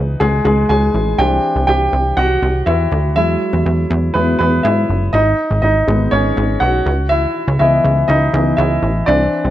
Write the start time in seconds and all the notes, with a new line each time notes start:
Already playing: C#2 E3 B3 D#4 B4
0.20 C#2 G#3 G#4
0.45 C#2 G#3 G#4
0.69 C#2 G#4 G#5
0.94 A1
1.18 C2 E3 C4 D4 G4 G5
1.56 C2
1.67 C2 G4 G5
1.93 C2
2.17 C2 F#4 F#5
2.42 C2
2.66 E2 E4 E5
2.92 D2
3.16 E2 F#3 G#3 E4 E5
3.53 E2
3.66 E2
3.90 E2
4.14 E2 F#3 G#3 B3 E4 B4
4.39 E2 B3 B4
4.63 G#2 E4 E5
4.89 F#1
5.13 G#1 D#4 D#5
5.51 G#1
5.62 G#1 D#4 D#5
5.87 G#1 G#3 B3 D#4
6.11 G#1 C#4 C#5
6.37 G#1
6.60 B1 F#4 F#5
6.86 C#2
7.09 E4 E5
7.48 C#2
7.59 C#2 E3 B3 E4 D#5 E5
7.84 C#2
8.08 C#2 D#4 D#5
8.33 C#2 E3 B3 D#4
8.57 C#2 E4 E5
8.83 A1
9.06 C2 E3 C4 D4 D5
9.45 C2